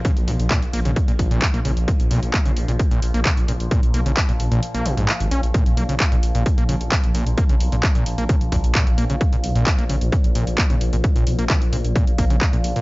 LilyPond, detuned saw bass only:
\new Staff \with { instrumentName = "Detuned saw bass" } { \clef bass \time 4/4 \key bes \phrygian \tempo 4 = 131 r16 bes,,16 ces,16 bes,,16 r16 bes,,16 bes,,16 bes,,16 r16 bes,,16 bes,,16 bes,,16 r16 bes,,16 bes,,16 bes,,16 | r16 bes,,16 ces,16 bes,,16 r16 bes,,16 bes,,16 bes,,16 r16 bes,,16 bes,,16 bes,,16 r16 bes,,16 bes,,16 bes,,16 | r16 bes,,16 ces,16 bes,,16 r16 bes,,16 bes,,16 bes,,16 r16 bes,,16 bes,,16 bes,,16 r16 aes,,16 bes,,16 bes,,16 | r16 bes,,16 ces,16 bes,,16 r16 bes,,16 bes,,16 bes,,16 r16 bes,,16 bes,,16 bes,,16 r16 bes,,16 bes,,16 bes,,16 |
r16 bes,,16 ces,16 bes,,16 r16 bes,,16 bes,,16 bes,,16 r16 bes,,16 bes,,16 bes,,16 r16 bes,,16 bes,,16 bes,,16 | r16 bes,,16 ces,16 bes,,16 r16 bes,,16 bes,,16 bes,,16 r16 bes,,16 bes,,16 bes,,16 r16 bes,,16 bes,,16 bes,,16 | r16 bes,,16 ces,16 bes,,16 r16 bes,,16 bes,,16 bes,,16 r16 bes,,16 bes,,16 bes,,16 r16 bes,,16 bes,,16 bes,16 | }